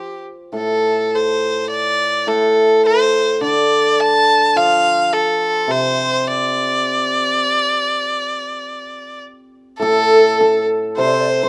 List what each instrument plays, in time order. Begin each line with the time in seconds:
Already playing: erhu G4
0.52 hammered dulcimer A2, erhu A4
1.15 erhu C5
1.70 erhu D5
2.27 hammered dulcimer A2, erhu A4
2.86 erhu C5
3.41 hammered dulcimer D3, erhu D5
4.00 erhu A5
4.56 hammered dulcimer F3, erhu F5
5.13 erhu A4
5.68 hammered dulcimer C3, erhu C5
6.27 erhu D5
9.78 hammered dulcimer A2 A4, erhu A4
9.83 xiao A4
10.41 hammered dulcimer A4
10.97 hammered dulcimer C3 C5, erhu C5, xiao C5
11.06 xiao D5
11.14 xiao C5
11.20 xiao D5
11.30 xiao C5
11.43 hammered dulcimer C5